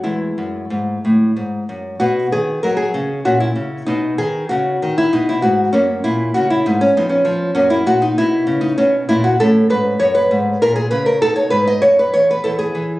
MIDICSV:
0, 0, Header, 1, 2, 480
1, 0, Start_track
1, 0, Tempo, 657174
1, 26, Time_signature, 3, 2, 24, 8
1, 1466, Tempo, 624350
1, 3866, Tempo, 609137
1, 10065, End_track
2, 0, Start_track
2, 0, Title_t, "Nylon-string guitar"
2, 0, Program_c, 0, 24
2, 25, Note_on_c, 0, 64, 66
2, 30, Note_on_c, 0, 40, 47
2, 31, Note_on_c, 0, 56, 36
2, 223, Note_off_c, 0, 40, 0
2, 276, Note_on_c, 0, 42, 45
2, 468, Note_off_c, 0, 42, 0
2, 514, Note_on_c, 0, 44, 44
2, 708, Note_off_c, 0, 44, 0
2, 765, Note_on_c, 0, 45, 45
2, 953, Note_off_c, 0, 45, 0
2, 967, Note_off_c, 0, 64, 0
2, 997, Note_on_c, 0, 44, 46
2, 1187, Note_off_c, 0, 44, 0
2, 1234, Note_on_c, 0, 42, 41
2, 1420, Note_off_c, 0, 42, 0
2, 1438, Note_off_c, 0, 56, 0
2, 1458, Note_on_c, 0, 66, 74
2, 1464, Note_on_c, 0, 47, 51
2, 1465, Note_on_c, 0, 59, 37
2, 1657, Note_off_c, 0, 47, 0
2, 1692, Note_off_c, 0, 66, 0
2, 1709, Note_on_c, 0, 51, 49
2, 1709, Note_on_c, 0, 68, 69
2, 1900, Note_off_c, 0, 51, 0
2, 1937, Note_off_c, 0, 68, 0
2, 1944, Note_on_c, 0, 70, 69
2, 1953, Note_on_c, 0, 54, 54
2, 2047, Note_off_c, 0, 70, 0
2, 2050, Note_on_c, 0, 68, 61
2, 2142, Note_off_c, 0, 54, 0
2, 2184, Note_on_c, 0, 49, 50
2, 2376, Note_off_c, 0, 49, 0
2, 2393, Note_off_c, 0, 59, 0
2, 2403, Note_off_c, 0, 68, 0
2, 2421, Note_on_c, 0, 61, 39
2, 2422, Note_on_c, 0, 66, 67
2, 2427, Note_on_c, 0, 46, 55
2, 2537, Note_off_c, 0, 66, 0
2, 2540, Note_on_c, 0, 64, 72
2, 2619, Note_off_c, 0, 46, 0
2, 2657, Note_on_c, 0, 49, 45
2, 2853, Note_off_c, 0, 49, 0
2, 2874, Note_off_c, 0, 61, 0
2, 2889, Note_off_c, 0, 64, 0
2, 2894, Note_on_c, 0, 63, 74
2, 2903, Note_on_c, 0, 47, 53
2, 3097, Note_off_c, 0, 47, 0
2, 3131, Note_off_c, 0, 63, 0
2, 3138, Note_on_c, 0, 68, 67
2, 3140, Note_on_c, 0, 51, 51
2, 3335, Note_off_c, 0, 51, 0
2, 3373, Note_off_c, 0, 68, 0
2, 3376, Note_on_c, 0, 66, 63
2, 3389, Note_on_c, 0, 49, 52
2, 3581, Note_off_c, 0, 49, 0
2, 3631, Note_on_c, 0, 51, 53
2, 3727, Note_off_c, 0, 66, 0
2, 3750, Note_on_c, 0, 64, 68
2, 3820, Note_off_c, 0, 51, 0
2, 3866, Note_on_c, 0, 63, 71
2, 3867, Note_off_c, 0, 64, 0
2, 3871, Note_on_c, 0, 47, 51
2, 3985, Note_off_c, 0, 63, 0
2, 3992, Note_on_c, 0, 64, 65
2, 4059, Note_off_c, 0, 47, 0
2, 4094, Note_off_c, 0, 64, 0
2, 4098, Note_on_c, 0, 66, 66
2, 4106, Note_on_c, 0, 44, 52
2, 4296, Note_off_c, 0, 44, 0
2, 4329, Note_off_c, 0, 66, 0
2, 4337, Note_on_c, 0, 61, 76
2, 4345, Note_on_c, 0, 42, 57
2, 4348, Note_on_c, 0, 58, 42
2, 4537, Note_off_c, 0, 42, 0
2, 4571, Note_off_c, 0, 61, 0
2, 4583, Note_on_c, 0, 64, 74
2, 4588, Note_on_c, 0, 46, 55
2, 4780, Note_off_c, 0, 46, 0
2, 4816, Note_off_c, 0, 64, 0
2, 4823, Note_on_c, 0, 66, 73
2, 4837, Note_on_c, 0, 49, 59
2, 4944, Note_off_c, 0, 66, 0
2, 4949, Note_on_c, 0, 64, 63
2, 5024, Note_off_c, 0, 49, 0
2, 5067, Note_off_c, 0, 64, 0
2, 5072, Note_on_c, 0, 63, 72
2, 5076, Note_on_c, 0, 44, 56
2, 5188, Note_off_c, 0, 63, 0
2, 5191, Note_on_c, 0, 61, 69
2, 5263, Note_off_c, 0, 44, 0
2, 5274, Note_off_c, 0, 58, 0
2, 5307, Note_off_c, 0, 61, 0
2, 5316, Note_on_c, 0, 41, 58
2, 5318, Note_on_c, 0, 59, 43
2, 5319, Note_on_c, 0, 63, 85
2, 5412, Note_off_c, 0, 63, 0
2, 5415, Note_on_c, 0, 61, 73
2, 5504, Note_off_c, 0, 41, 0
2, 5535, Note_on_c, 0, 53, 62
2, 5732, Note_off_c, 0, 53, 0
2, 5760, Note_off_c, 0, 59, 0
2, 5762, Note_off_c, 0, 61, 0
2, 5771, Note_on_c, 0, 61, 88
2, 5779, Note_on_c, 0, 42, 59
2, 5780, Note_on_c, 0, 58, 46
2, 5893, Note_on_c, 0, 64, 73
2, 5899, Note_off_c, 0, 61, 0
2, 5975, Note_off_c, 0, 42, 0
2, 6020, Note_off_c, 0, 64, 0
2, 6021, Note_on_c, 0, 46, 56
2, 6025, Note_on_c, 0, 66, 82
2, 6143, Note_on_c, 0, 63, 76
2, 6145, Note_off_c, 0, 66, 0
2, 6217, Note_off_c, 0, 46, 0
2, 6265, Note_off_c, 0, 63, 0
2, 6270, Note_on_c, 0, 64, 83
2, 6273, Note_on_c, 0, 47, 60
2, 6462, Note_off_c, 0, 47, 0
2, 6496, Note_on_c, 0, 49, 61
2, 6609, Note_on_c, 0, 63, 73
2, 6612, Note_off_c, 0, 64, 0
2, 6690, Note_off_c, 0, 49, 0
2, 6736, Note_off_c, 0, 63, 0
2, 6740, Note_on_c, 0, 61, 75
2, 6743, Note_on_c, 0, 47, 62
2, 6935, Note_off_c, 0, 47, 0
2, 6972, Note_off_c, 0, 61, 0
2, 6985, Note_on_c, 0, 64, 84
2, 6992, Note_on_c, 0, 46, 62
2, 7101, Note_off_c, 0, 64, 0
2, 7104, Note_on_c, 0, 66, 73
2, 7182, Note_off_c, 0, 46, 0
2, 7191, Note_off_c, 0, 58, 0
2, 7226, Note_off_c, 0, 66, 0
2, 7232, Note_on_c, 0, 69, 91
2, 7235, Note_on_c, 0, 61, 48
2, 7239, Note_on_c, 0, 45, 67
2, 7427, Note_off_c, 0, 45, 0
2, 7461, Note_off_c, 0, 69, 0
2, 7466, Note_on_c, 0, 44, 54
2, 7470, Note_on_c, 0, 71, 78
2, 7659, Note_off_c, 0, 44, 0
2, 7698, Note_off_c, 0, 71, 0
2, 7701, Note_on_c, 0, 73, 96
2, 7705, Note_on_c, 0, 42, 63
2, 7820, Note_on_c, 0, 71, 88
2, 7824, Note_off_c, 0, 73, 0
2, 7897, Note_off_c, 0, 42, 0
2, 7949, Note_on_c, 0, 44, 65
2, 8140, Note_off_c, 0, 44, 0
2, 8160, Note_off_c, 0, 61, 0
2, 8169, Note_off_c, 0, 71, 0
2, 8190, Note_on_c, 0, 64, 45
2, 8193, Note_on_c, 0, 70, 96
2, 8199, Note_on_c, 0, 46, 64
2, 8297, Note_off_c, 0, 70, 0
2, 8300, Note_on_c, 0, 68, 88
2, 8386, Note_off_c, 0, 46, 0
2, 8416, Note_off_c, 0, 68, 0
2, 8419, Note_on_c, 0, 71, 86
2, 8424, Note_on_c, 0, 49, 62
2, 8537, Note_off_c, 0, 71, 0
2, 8540, Note_on_c, 0, 70, 74
2, 8617, Note_off_c, 0, 49, 0
2, 8638, Note_off_c, 0, 64, 0
2, 8661, Note_off_c, 0, 70, 0
2, 8664, Note_on_c, 0, 69, 95
2, 8665, Note_on_c, 0, 63, 44
2, 8672, Note_on_c, 0, 47, 69
2, 8771, Note_off_c, 0, 69, 0
2, 8774, Note_on_c, 0, 73, 85
2, 8861, Note_off_c, 0, 47, 0
2, 8887, Note_off_c, 0, 73, 0
2, 8890, Note_on_c, 0, 71, 89
2, 8897, Note_on_c, 0, 44, 58
2, 9017, Note_off_c, 0, 71, 0
2, 9024, Note_on_c, 0, 75, 79
2, 9092, Note_off_c, 0, 44, 0
2, 9136, Note_on_c, 0, 73, 92
2, 9143, Note_on_c, 0, 42, 64
2, 9144, Note_off_c, 0, 75, 0
2, 9261, Note_off_c, 0, 73, 0
2, 9274, Note_on_c, 0, 71, 78
2, 9336, Note_off_c, 0, 42, 0
2, 9384, Note_off_c, 0, 71, 0
2, 9387, Note_on_c, 0, 73, 98
2, 9391, Note_on_c, 0, 40, 57
2, 9507, Note_off_c, 0, 73, 0
2, 9522, Note_on_c, 0, 71, 82
2, 9581, Note_off_c, 0, 40, 0
2, 9594, Note_off_c, 0, 63, 0
2, 9626, Note_on_c, 0, 69, 88
2, 9629, Note_off_c, 0, 71, 0
2, 9632, Note_on_c, 0, 64, 46
2, 9633, Note_on_c, 0, 40, 61
2, 9739, Note_off_c, 0, 69, 0
2, 9742, Note_on_c, 0, 68, 86
2, 9821, Note_off_c, 0, 40, 0
2, 9869, Note_on_c, 0, 52, 54
2, 10058, Note_off_c, 0, 52, 0
2, 10065, Note_off_c, 0, 64, 0
2, 10065, Note_off_c, 0, 68, 0
2, 10065, End_track
0, 0, End_of_file